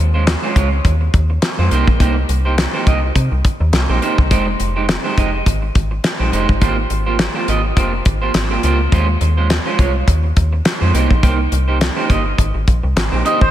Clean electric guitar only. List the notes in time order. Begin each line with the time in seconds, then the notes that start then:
0.14 G#3 C#4 F4 C5
0.43 G#3 C#4 F4 C5
0.56 G#3 C#4 F4 C#5
0.72 muted clean electric guitar stroke
0.85 muted clean electric guitar stroke
1.01 muted clean electric guitar stroke
1.30 muted clean electric guitar stroke
1.43 muted clean electric guitar stroke
1.59 G#3 C#4 F4 C5
1.71 A#3 D#4 G4 C5
1.88 muted clean electric guitar stroke
2.00 A#3 D#4 G4 C5
2.16 muted clean electric guitar stroke
2.29 muted clean electric guitar stroke
2.45 A#3 D#4 G4 C5
2.74 A#3 D#4 G4 C5
2.87 A#3 D#4 G4 D#5
3.03 muted clean electric guitar stroke
3.16 muted clean electric guitar stroke
3.32 muted clean electric guitar stroke
3.61 muted clean electric guitar stroke
3.74 muted clean electric guitar stroke
3.89 A#3 D#4 G4 C5
4.02 A#3 D#4 G4 C5
4.31 G#3 D#4 G4 C5
4.47 muted clean electric guitar stroke
4.60 muted clean electric guitar stroke
4.76 G#3 D#4 G4 C5
5.04 G#3 D#4 G4 C5
5.17 G#3 D#4 G4 D#5
5.33 muted clean electric guitar stroke
5.46 muted clean electric guitar stroke
5.62 muted clean electric guitar stroke
5.91 muted clean electric guitar stroke
6.04 muted clean electric guitar stroke
6.20 G#3 D#4 G4 C5
6.32 G#3 D#4 G4 C5
6.49 muted clean electric guitar stroke
6.61 A#3 F4 G4 C5
6.78 muted clean electric guitar stroke
6.90 muted clean electric guitar stroke
7.06 A#3 F4 G4 C5
7.35 A#3 F4 G4 C5
7.48 A#3 F4 G4 D#5
7.64 muted clean electric guitar stroke
7.77 A#3 F4 G4 C5
7.93 muted clean electric guitar stroke
8.05 muted clean electric guitar stroke
8.22 A#3 F4 G4 C5
8.50 A#3 F4 G4 C5
8.63 A#3 F4 G4 C5
8.80 muted clean electric guitar stroke
8.92 G#3 C#4 F4 C5
9.08 muted clean electric guitar stroke
9.21 muted clean electric guitar stroke
9.37 G#3 C#4 F4 C5
9.50 muted clean electric guitar stroke
9.66 G#3 C#4 F4 C5
9.79 G#3 C#4 F4 C#5
9.95 muted clean electric guitar stroke
10.07 muted clean electric guitar stroke
10.24 muted clean electric guitar stroke
10.53 muted clean electric guitar stroke
10.65 muted clean electric guitar stroke
10.81 G#3 C#4 F4 C5
10.94 A#3 D#4 G4 C5
11.10 muted clean electric guitar stroke
11.23 A#3 D#4 G4 C5
11.39 muted clean electric guitar stroke
11.52 muted clean electric guitar stroke
11.68 A#3 D#4 G4 C5
11.97 A#3 D#4 G4 C5
12.09 A#3 D#4 G4 D#5
12.26 muted clean electric guitar stroke
12.38 muted clean electric guitar stroke
12.55 muted clean electric guitar stroke
12.83 muted clean electric guitar stroke
12.96 muted clean electric guitar stroke
13.12 A#3 D#4 G4 C5
13.25 A#3 D#4 G4 C5
13.41 muted clean electric guitar stroke